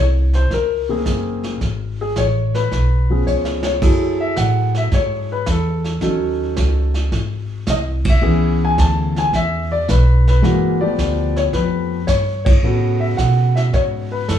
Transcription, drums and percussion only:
0.33 snare soft
0.51 brush sweep soft
0.51 kick soft
0.51 snare soft
1.06 kick soft
1.06 snare soft
1.06 hi-hat pedal soft
1.43 snare soft
1.61 brush sweep soft
1.61 kick soft
1.61 snare soft
2.16 kick soft
2.16 snare soft
2.16 hi-hat pedal soft
2.54 snare soft
2.72 brush sweep soft
2.72 kick soft
2.72 snare soft
3.27 hi-hat pedal soft
3.45 snare soft
3.63 snare medium
3.82 brush sweep soft
3.82 kick medium
3.82 snare soft
3.82 crash medium
4.36 kick soft
4.36 snare medium
4.36 hi-hat pedal medium
4.75 snare soft
4.92 brush sweep soft
4.92 kick soft
4.92 snare soft
5.46 kick soft
5.46 snare medium
5.46 hi-hat pedal medium
5.84 snare soft
6.01 brush sweep soft
6.01 kick soft
6.01 snare soft
6.56 kick soft
6.56 snare medium
6.56 hi-hat pedal medium
6.94 snare soft
7.12 brush sweep soft
7.12 kick soft
7.12 snare soft
7.67 kick soft
7.67 snare medium
7.67 hi-hat pedal medium
8.05 kick medium
8.05 ride medium
8.23 brush sweep soft
8.78 kick soft
8.78 snare soft
8.78 hi-hat pedal soft
9.16 snare soft
9.33 brush sweep soft
9.33 kick soft
9.33 snare soft
9.88 kick soft
9.88 snare medium
9.88 hi-hat pedal medium
10.27 snare soft
10.43 brush sweep soft
10.43 kick soft
10.43 snare soft
10.98 kick soft
10.98 snare soft
10.98 hi-hat pedal soft
11.36 snare soft
11.53 brush sweep medium
11.53 kick soft
11.53 snare soft
12.08 kick soft
12.08 snare medium
12.08 hi-hat pedal soft
12.46 kick medium
12.46 ride medium
12.63 brush sweep medium
13.18 kick soft
13.18 snare medium
13.18 hi-hat pedal soft
13.56 snare soft
13.73 brush sweep soft
13.73 kick soft
13.73 snare soft
14.28 kick soft
14.28 snare medium
14.28 hi-hat pedal medium

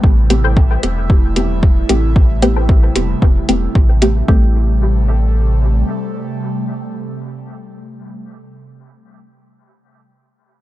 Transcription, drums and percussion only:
0.04 kick loud
0.30 closed hi-hat medium
0.57 kick loud
0.83 closed hi-hat medium
1.10 kick loud
1.36 closed hi-hat medium
1.63 kick loud
1.89 closed hi-hat medium
2.16 kick loud
2.42 closed hi-hat medium
2.69 kick loud
2.96 closed hi-hat medium
3.22 kick loud
3.49 closed hi-hat medium
3.75 kick loud
4.02 closed hi-hat medium
4.28 kick loud

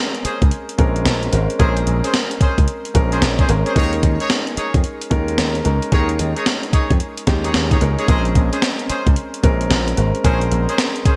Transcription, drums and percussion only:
0.15 closed hi-hat soft
0.25 closed hi-hat medium
0.42 kick loud
0.42 closed hi-hat soft
0.51 closed hi-hat medium
0.69 closed hi-hat medium
0.79 kick loud
0.79 closed hi-hat medium
0.96 closed hi-hat soft
1.05 snare loud
1.05 closed hi-hat medium
1.23 closed hi-hat soft
1.33 closed hi-hat medium
1.50 closed hi-hat soft
1.60 kick loud
1.60 closed hi-hat medium
1.77 closed hi-hat soft
1.87 closed hi-hat medium
2.04 closed hi-hat medium
2.14 snare loud
2.14 closed hi-hat medium
2.31 closed hi-hat soft
2.41 kick loud
2.41 closed hi-hat medium
2.58 kick medium
2.58 closed hi-hat soft
2.68 closed hi-hat medium
2.85 closed hi-hat medium
2.95 kick medium
2.95 closed hi-hat medium
3.12 closed hi-hat soft
3.22 snare medium
3.22 closed hi-hat medium
3.39 kick medium
3.39 closed hi-hat soft
3.49 closed hi-hat medium
3.66 closed hi-hat soft
3.76 kick loud
3.76 closed hi-hat medium
3.93 closed hi-hat soft
4.03 kick medium
4.03 closed hi-hat medium
4.20 closed hi-hat medium
4.30 snare loud
4.30 closed hi-hat medium
4.47 closed hi-hat soft
4.57 closed hi-hat medium
4.74 kick loud
4.74 closed hi-hat soft
4.84 closed hi-hat medium
5.01 closed hi-hat medium
5.11 kick loud
5.11 closed hi-hat medium
5.28 closed hi-hat soft
5.38 snare loud
5.38 closed hi-hat medium
5.55 closed hi-hat soft
5.65 closed hi-hat medium
5.82 closed hi-hat soft
5.92 kick loud
5.92 closed hi-hat medium
6.09 closed hi-hat soft
6.19 closed hi-hat medium
6.36 closed hi-hat medium
6.46 snare loud
6.46 closed hi-hat medium
6.63 closed hi-hat soft
6.73 kick loud
6.73 closed hi-hat medium
6.90 kick medium
6.90 closed hi-hat soft
7.00 closed hi-hat medium
7.17 closed hi-hat medium
7.27 kick medium
7.27 snare medium
7.27 closed hi-hat medium
7.44 closed hi-hat medium
7.54 snare loud
7.54 closed hi-hat medium
7.71 kick medium
7.71 closed hi-hat soft
7.81 closed hi-hat medium
7.99 closed hi-hat soft
8.08 kick loud
8.08 closed hi-hat medium
8.25 closed hi-hat soft
8.35 kick medium
8.35 closed hi-hat medium
8.53 closed hi-hat medium
8.62 snare loud
8.62 closed hi-hat medium
8.79 closed hi-hat soft
8.89 closed hi-hat medium
9.07 kick medium
9.07 closed hi-hat medium
9.16 closed hi-hat medium
9.34 closed hi-hat medium
9.44 kick loud
9.44 closed hi-hat medium
9.61 closed hi-hat medium
9.71 snare loud
9.71 closed hi-hat medium
9.88 closed hi-hat soft
9.97 closed hi-hat medium
10.15 closed hi-hat soft
10.24 kick loud
10.24 closed hi-hat medium
10.41 closed hi-hat soft
10.52 closed hi-hat medium
10.69 closed hi-hat medium
10.78 snare loud
10.78 closed hi-hat medium
10.96 closed hi-hat soft
11.05 kick loud
11.05 closed hi-hat medium

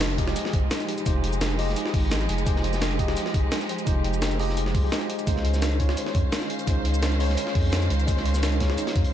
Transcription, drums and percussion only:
0.00 snare loud
0.00 closed hi-hat medium
0.00 cabasa soft
0.10 closed hi-hat soft
0.18 kick medium
0.18 closed hi-hat medium
0.27 snare soft
0.27 snare medium
0.36 closed hi-hat loud
0.36 closed hi-hat medium
0.36 cabasa medium
0.45 snare medium
0.45 snare soft
0.53 kick loud
0.53 closed hi-hat medium
0.71 snare loud
0.71 closed hi-hat medium
0.71 cabasa soft
0.80 snare soft
0.80 cabasa soft
0.89 closed hi-hat medium
0.98 closed hi-hat soft
0.98 cabasa soft
1.06 kick loud
1.06 closed hi-hat medium
1.06 closed hi-hat loud
1.06 cabasa soft
1.24 closed hi-hat medium
1.33 cabasa medium
1.41 snare loud
1.41 closed hi-hat medium
1.41 cabasa soft
1.50 closed hi-hat soft
1.59 closed hi-hat medium
1.59 open hi-hat medium
1.69 snare soft
1.76 closed hi-hat loud
1.76 closed hi-hat medium
1.76 cabasa soft
1.86 snare soft
1.94 kick loud
1.94 closed hi-hat medium
1.94 open hi-hat medium
2.11 snare loud
2.11 closed hi-hat medium
2.11 closed hi-hat loud
2.11 cabasa soft
2.21 snare soft
2.21 cabasa soft
2.29 closed hi-hat medium
2.38 closed hi-hat soft
2.38 cabasa soft
2.47 kick loud
2.47 closed hi-hat medium
2.47 cabasa soft
2.56 snare medium
2.64 closed hi-hat medium
2.73 snare medium
2.73 cabasa medium
2.81 snare loud
2.81 closed hi-hat medium
2.81 cabasa soft
2.91 closed hi-hat soft
2.99 kick medium
2.99 closed hi-hat medium
3.08 snare soft
3.08 snare medium
3.17 closed hi-hat medium
3.17 cabasa soft
3.25 snare medium
3.25 snare soft
3.34 kick loud
3.34 closed hi-hat medium
3.52 snare loud
3.52 closed hi-hat medium
3.52 cabasa soft
3.61 snare soft
3.61 cabasa soft
3.69 closed hi-hat medium
3.79 closed hi-hat soft
3.79 cabasa soft
3.87 kick loud
3.87 closed hi-hat medium
3.87 cabasa soft
4.04 closed hi-hat medium
4.14 cabasa medium
4.22 snare loud
4.22 closed hi-hat medium
4.22 cabasa soft
4.31 closed hi-hat soft
4.31 cabasa soft
4.40 closed hi-hat medium
4.40 open hi-hat medium
4.49 snare soft
4.57 closed hi-hat medium
4.57 cabasa soft
4.66 snare soft
4.74 kick loud
4.74 closed hi-hat medium
4.74 open hi-hat medium
4.92 snare loud
4.92 closed hi-hat medium
4.92 cabasa soft
5.01 snare soft
5.01 cabasa soft
5.10 closed hi-hat medium
5.19 closed hi-hat soft
5.19 cabasa soft
5.27 kick loud
5.27 closed hi-hat medium
5.27 cabasa soft
5.36 snare medium
5.45 closed hi-hat medium
5.54 snare soft
5.54 cabasa medium
5.62 snare loud
5.62 closed hi-hat medium
5.62 cabasa soft
5.71 closed hi-hat soft
5.80 kick medium
5.80 closed hi-hat medium
5.89 snare soft
5.89 snare medium
5.97 closed hi-hat medium
5.97 cabasa soft
6.06 snare soft
6.15 kick loud
6.15 closed hi-hat medium
6.32 snare loud
6.32 closed hi-hat medium
6.32 cabasa soft
6.41 snare soft
6.41 cabasa soft
6.50 closed hi-hat medium
6.59 closed hi-hat soft
6.59 cabasa soft
6.67 kick loud
6.67 closed hi-hat medium
6.67 cabasa medium
6.85 closed hi-hat medium
6.94 cabasa medium
7.03 snare loud
7.03 closed hi-hat medium
7.03 cabasa soft
7.12 closed hi-hat soft
7.20 closed hi-hat medium
7.20 open hi-hat medium
7.29 snare soft
7.37 closed hi-hat loud
7.37 closed hi-hat medium
7.37 cabasa medium
7.47 snare soft
7.55 kick loud
7.55 closed hi-hat medium
7.55 open hi-hat medium
7.73 snare loud
7.73 closed hi-hat medium
7.73 cabasa medium
7.82 snare soft
7.82 cabasa soft
7.90 closed hi-hat medium
8.00 closed hi-hat soft
8.00 cabasa soft
8.08 kick loud
8.08 closed hi-hat medium
8.08 closed hi-hat loud
8.08 cabasa medium
8.17 snare medium
8.26 closed hi-hat medium
8.34 snare medium
8.34 cabasa medium
8.43 snare loud
8.43 closed hi-hat medium
8.43 closed hi-hat loud
8.43 cabasa medium
8.52 closed hi-hat soft
8.60 kick medium
8.60 snare loud
8.60 closed hi-hat medium
8.70 snare soft
8.70 snare medium
8.77 closed hi-hat medium
8.77 closed hi-hat loud
8.77 cabasa medium
8.87 snare loud
8.87 snare soft
8.87 closed hi-hat medium
8.96 kick medium
8.96 snare soft
8.96 closed hi-hat medium
9.04 closed hi-hat medium

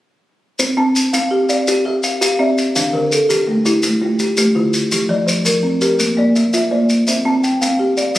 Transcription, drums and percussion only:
0.59 maracas medium
0.96 maracas medium
1.14 maracas medium
1.49 maracas soft
1.68 maracas medium
2.03 maracas medium
2.22 maracas medium
2.58 maracas medium
2.76 maracas medium
3.12 maracas medium
3.30 maracas medium
3.66 maracas medium
3.83 maracas medium
4.19 maracas medium
4.37 maracas medium
4.74 maracas medium
4.92 maracas medium
5.28 maracas medium
5.46 maracas medium
5.81 maracas medium
6.00 maracas medium
6.36 maracas medium
6.54 maracas medium
6.90 maracas medium
7.07 maracas medium
7.44 maracas medium
7.62 maracas medium
7.97 maracas soft
8.15 maracas medium

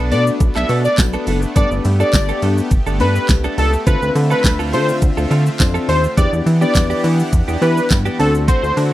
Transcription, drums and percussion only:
0.12 open hi-hat medium
0.12 shaker medium
0.27 shaker medium
0.40 kick loud
0.40 closed hi-hat medium
0.40 shaker medium
0.56 clap medium
0.56 shaker medium
0.69 open hi-hat medium
0.69 shaker soft
0.85 shaker medium
0.98 kick loud
0.98 snare loud
0.98 clap loud
0.98 closed hi-hat medium
0.98 tambourine loud
0.98 shaker medium
1.13 shaker medium
1.27 open hi-hat medium
1.27 shaker medium
1.42 shaker medium
1.56 kick loud
1.56 closed hi-hat medium
1.56 shaker medium
1.71 shaker medium
1.85 open hi-hat medium
1.85 shaker medium
2.00 shaker medium
2.13 kick loud
2.13 snare medium
2.13 clap loud
2.13 closed hi-hat medium
2.13 tambourine medium
2.13 shaker medium
2.29 shaker medium
2.42 open hi-hat medium
2.42 shaker medium
2.58 shaker medium
2.71 kick loud
2.71 closed hi-hat medium
2.71 shaker medium
2.87 shaker medium
3.00 open hi-hat medium
3.00 shaker soft
3.16 shaker medium
3.29 kick loud
3.29 snare loud
3.29 clap loud
3.29 closed hi-hat medium
3.29 tambourine medium
3.29 shaker medium
3.44 shaker medium
3.58 open hi-hat medium
3.58 shaker medium
3.73 shaker medium
3.87 kick loud
3.87 closed hi-hat medium
3.87 shaker medium
4.02 shaker medium
4.16 open hi-hat medium
4.16 shaker medium
4.31 shaker medium
4.44 kick loud
4.44 snare medium
4.44 clap loud
4.44 closed hi-hat medium
4.44 tambourine medium
4.44 shaker medium
4.60 shaker medium
4.73 open hi-hat medium
4.73 shaker medium
4.89 shaker medium
5.02 kick loud
5.02 closed hi-hat medium
5.02 shaker medium
5.18 shaker medium
5.31 open hi-hat medium
5.31 shaker medium
5.47 shaker medium
5.60 kick loud
5.60 snare loud
5.60 clap loud
5.60 closed hi-hat medium
5.60 tambourine loud
5.60 shaker medium
5.75 shaker medium
5.89 open hi-hat medium
5.89 shaker medium
6.04 shaker medium
6.17 kick loud
6.17 closed hi-hat medium
6.17 shaker medium
6.33 shaker medium
6.47 open hi-hat medium
6.47 shaker medium
6.62 shaker medium
6.75 kick loud
6.75 snare medium
6.75 clap loud
6.75 closed hi-hat medium
6.75 tambourine loud
6.75 shaker medium
6.90 shaker medium
7.04 open hi-hat medium
7.04 shaker medium
7.19 shaker medium
7.33 kick loud
7.33 closed hi-hat medium
7.33 shaker medium
7.48 shaker medium
7.62 open hi-hat medium
7.62 shaker medium
7.77 shaker medium
7.90 kick loud
7.90 snare loud
7.90 clap loud
7.90 closed hi-hat medium
7.90 tambourine loud
7.90 shaker medium
8.06 shaker medium
8.20 open hi-hat medium
8.20 shaker medium
8.35 shaker medium
8.48 kick loud
8.48 closed hi-hat medium
8.48 shaker medium
8.64 shaker medium
8.77 open hi-hat medium
8.77 shaker medium

